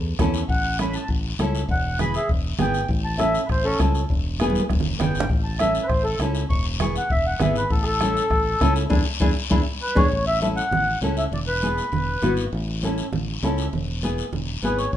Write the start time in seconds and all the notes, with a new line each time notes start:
Already playing: E2 A4
0.19 E2 C#4 E4 A4, bombo low, bombo rim, high conga, low conga, short guiro
0.34 short guiro
0.49 A1 F#5, bombo low, high conga, long guiro
0.79 C#4 E4 A4 B5, bombo rim, high conga, short guiro
0.94 A5, short guiro
1.08 A1, bombo low, high conga, long guiro
1.39 C#2 C#4 E4 A4, bombo rim, high conga, short guiro
1.55 short guiro
1.68 E1 F#5, bombo low, high conga, long guiro
1.99 B3 E4 G#4 B5, bombo rim, high conga, low conga, short guiro
2.14 G#4 E5, short guiro
2.29 E1, bombo low, high conga, long guiro
2.59 G#1 B3 E4 G#4 G5, bombo rim, high conga, low conga, short guiro
2.74 short guiro
2.89 A1, bombo low, high conga, long guiro
3.05 A5
3.18 C#4 E4 A4 E5, bombo rim, high conga, short guiro
3.34 short guiro
3.46 A1 B4, bombo low, bombo rim, long guiro
3.51 C5, high conga
3.64 C#4 A4
3.79 C#2 C#4 E4 A4, bombo low, bombo rim, high conga, short guiro
3.95 short guiro
4.09 E1, bombo low, high conga, long guiro
4.39 B3 E4 G#4, bombo rim, high conga, short guiro
4.50 high conga
4.55 short guiro
4.60 high conga
4.69 E1, bombo low, bombo rim, high conga, long guiro
4.80 low conga
4.99 F#1 B3 E4 G#4 G5, bombo rim, low conga, short guiro
5.15 G#1, short guiro
5.20 low conga
5.29 A1, bombo low, high conga, long guiro
5.44 A5
5.59 C#4 E4 A4 E5, bombo rim, high conga, short guiro
5.75 short guiro
5.83 B4
5.87 A1 C5, bombo low, bombo rim, high conga, long guiro
6.04 A4
6.19 C#2 C#4 E4 A4, bombo rim, high conga, short guiro
6.35 short guiro
6.50 E1 C#6, bombo low, high conga, long guiro
6.80 B3 E4 G#4 C#6, bombo rim, high conga, low conga, short guiro
6.96 F#5, short guiro
7.10 E1 E5, bombo low, high conga, long guiro
7.26 F#5
7.39 G#1 B3 E4 G#4 E5, bombo rim, high conga, low conga, short guiro
7.56 B4, short guiro
7.70 A1 A4, bombo low, high conga, long guiro
7.83 G#4
7.87 A4
8.01 C#4 E4 A4, bombo rim, high conga, short guiro
8.17 short guiro
8.30 A1, bombo low, bombo rim, high conga, long guiro
8.61 C#2 C#4 E4 A4, bombo low, bombo rim, high conga, short guiro
8.76 short guiro
8.90 E2 D4 E4 G#4, bombo low, high conga, long guiro
9.20 E2 D4 E4 G#4, bombo low, high conga, long guiro
9.50 E2 D4 E4 G#4, bombo low, high conga, long guiro
9.82 B4
9.95 E2 D4 E4 G#4 C#5, bombo low, high conga, long guiro
10.12 A1, high conga, long guiro
10.27 E5
10.41 C#4 E4 A4 E5, high conga, short guiro
10.56 F#5, short guiro
10.71 A1, high conga, low conga, long guiro
11.01 C#2 C#4 E4 A4, high conga, short guiro
11.17 E5, short guiro
11.32 E1 D5, high conga, low conga, long guiro
11.47 B4
11.62 B3 E4 G#4, high conga, short guiro
11.78 short guiro
11.92 E1, high conga, low conga, long guiro
12.22 G#1 B3 E4 F#4, high conga, low conga, short guiro
12.37 short guiro
12.53 A1, high conga, long guiro
12.83 C#4 E4 A4, high conga, short guiro
12.98 short guiro
13.13 A1, high conga, low conga, long guiro
13.43 C#2 C#4 E4 A4, high conga, short guiro
13.58 short guiro
13.73 E1, high conga, low conga, long guiro
14.03 B3 E4 G#4, high conga, short guiro
14.18 short guiro
14.33 E1, high conga, low conga, long guiro
14.62 G#1 B3 E4 G#4 B4, high conga, short guiro
14.78 C#5, short guiro
14.93 A1 C#5, bombo low, high conga, long guiro